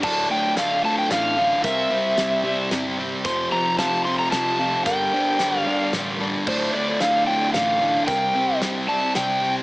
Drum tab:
CC |x-----|------|------|------|
HH |--x-x-|x-x-x-|x-x-x-|x-x-x-|
SD |--o-o-|--o-o-|--o-o-|--o-o-|
BD |o-----|o-----|o-----|o-----|

CC |x-----|------|
HH |--x-x-|x-x-x-|
SD |--o-o-|--o-o-|
BD |o-----|o-----|